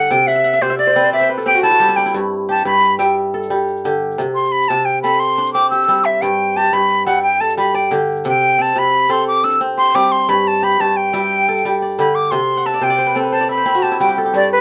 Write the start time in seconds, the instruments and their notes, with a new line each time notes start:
Already playing: kora G2 D3 G4 A4 D5, flute F#5
0.02 shaker
0.11 kora C3, flute G5, shaker
0.27 flute E5, kora F#5
0.36 kora E5
0.44 kora F#5
0.53 kora E5, shaker
0.62 kora C3 D5, flute C5, shaker
0.70 kora E5
0.78 flute D5, kora D5
0.87 kora C5
0.96 kora C4 B4, shaker
1.04 kora C5, shaker
1.13 kora D5, flute E5
1.21 kora C5
1.29 kora B4
1.38 kora A4, shaker
1.46 kora C4 G4, flute G5
1.55 kora F#4
1.63 kora E4, flute A5, shaker
1.71 kora F#4, shaker
1.80 kora G3 G4, shaker
1.89 kora E4
1.96 kora D4, flute G5
2.06 kora E4, shaker
2.14 kora G2, shaker
2.49 kora G4, flute A5
2.58 shaker
2.65 kora G2, flute B5, shaker
2.99 kora G3 E5, flute G5, shaker
3.34 kora A4
3.43 shaker
3.50 kora G3
3.68 shaker
3.76 shaker
3.85 kora D3 G4, shaker
4.11 shaker
4.18 kora C3, shaker
4.35 flute C6, shaker
4.45 shaker
4.52 flute B5, shaker
4.62 shaker
4.68 kora C3, flute A5
4.85 flute G5, shaker
5.02 kora C4 A4, flute B5, shaker
5.13 shaker
5.20 flute C6
5.30 shaker
5.38 kora D4, shaker
5.46 shaker
5.53 kora C4, flute D6
5.70 kora G4, flute E6, shaker
5.81 shaker
5.88 kora G3 C4, shaker
6.05 flute E5, shaker
6.22 kora G2, flute G5, shaker
6.56 kora G4, flute A5
6.66 shaker
6.73 kora G2, flute B5, shaker
7.06 kora G3 E5, flute F#5, shaker
7.16 shaker
7.23 flute G5
7.41 kora A4, flute A5
7.50 shaker
7.58 kora G3, flute B5
7.74 kora D5, flute G5, shaker
7.83 shaker
7.91 kora D3 G4, shaker
8.16 shaker
8.24 kora C3, shaker
8.29 flute G5
8.59 kora C4, flute A5
8.66 shaker
8.76 kora C3, flute B5, shaker
9.09 kora C4 A4, flute C6, shaker
9.28 flute D6
9.44 kora D4, flute E6
9.51 shaker
9.61 kora C4
9.77 kora G4, flute C6, shaker
9.86 shaker
9.95 kora G3 C4, flute D6, shaker
10.12 flute C6
10.20 shaker
10.28 kora G2, flute B5, shaker
10.47 flute A5
10.63 kora G4, flute B5
10.71 shaker
10.80 kora G2, flute A5, shaker
10.97 flute G5
11.13 kora G3 E5, shaker
11.23 shaker
11.48 kora A4
11.57 shaker
11.65 kora G3
11.82 kora D5, shaker
11.90 shaker
11.99 kora D3 G4, flute B5, shaker
12.15 flute D6
12.25 shaker
12.31 kora C3, flute C6, shaker
12.41 shaker
12.57 kora F#5
12.66 kora E5, flute A5
12.74 kora D5, shaker
12.81 kora C3 C5, flute G5
12.90 kora D5
12.98 kora C5, shaker
13.07 kora B4
13.15 kora C4 A4, shaker
13.23 kora B4, shaker
13.32 kora C5, flute A5
13.41 kora D5
13.49 kora E5, flute B5, shaker
13.57 kora C5
13.66 kora C4 E4, shaker
13.74 kora F#4, shaker
13.82 kora G4, flute A5, shaker
13.92 kora E4
14.00 kora G3 F#4, flute G5, shaker
14.09 kora G4, shaker
14.18 kora A4, shaker
14.26 kora G4
14.34 kora G2, flute D5, shaker
14.52 flute B4